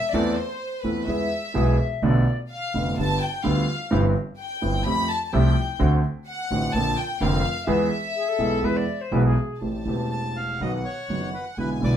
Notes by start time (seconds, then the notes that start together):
Already playing: E5
0.12 E2 E3 A3 C4 A4 D5
0.36 C5
0.81 E2 E3 A3 C4 A4 B4
1.07 E2 E3 G#3 B3 G#4 E5
1.54 B1 B2 E3 G#3 B3 G#4
1.78 E5
2.02 B1 B2 D3 A3 B3 F4 D5
2.50 F5
2.74 F1 F2 D3 A3 B3 F4
2.98 G1 G2 D3 G3 B3 F4 A5
3.22 G5
3.44 D2 D3 G3 B3 F4 F5
3.91 G1 G2 E3 G3 C4 G4
4.40 G5
4.62 G1 G2 E3 G3 C4 G4
4.85 F2 F3 A3 C4 G4 B5
5.10 A5
5.25 A5
5.33 C2 C3 F3 A3 C4 G4 G5
5.79 D2 D3 A3 C4 F#4
6.27 F#5
6.51 A1 A2 D3 A3 C4 F#4
6.72 A#1 A#2 D3 A#3 C4 F4 A5
6.97 G5
7.21 F1 F2 D3 A#3 C4 F4 F5
7.67 E2 E3 G#3 B3 G#4 E5
8.15 G#4
8.28 A4
8.39 B1 B2 E3 G#3 B3 G#4
8.62 E2 E3 G#3 B3 G#4 B4
8.76 D5
9.01 C5
9.12 B1 B2 E3 G#3 B3 G#4 B4
9.25 G#4
9.60 A1 A2 E3 A3 C4 G4 A5
9.85 E1 E2 E3 A3 C4 G4
10.12 A5
10.36 F5
10.60 B1 B2 D#3 F#3 B3 F#4 D#5 F#5
10.85 C#5
11.08 F#1 F#2 D#3 F#3 B3 F#4
11.34 B4
11.57 B1 B2 D3 G#3 B3 E4 B4 G#5
11.79 B1 B2 D3 G#3 B3
11.84 E4 D5